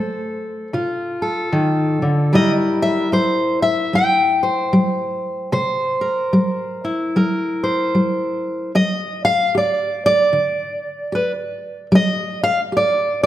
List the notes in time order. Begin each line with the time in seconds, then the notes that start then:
Already playing: A3 A4 C5
0.73 C3 F4
1.22 A4
1.52 D#3
2.02 D3
2.33 C3 G3 E4 A#4 D#5
2.82 E5
3.12 G3 C5
3.62 E5
3.93 G3 G5
4.43 C5
4.73 G3
5.52 C3 C5
6.01 A#4
6.33 G3
6.45 F5
6.85 E4
7.16 G3 A#4
7.64 C5
7.95 G3
8.75 G3 D#5
9.25 F5
9.55 G4 D5
10.06 D5
10.33 D3
11.12 G4 B4
11.92 G3 D#5
12.44 F5
12.72 G4
12.77 D5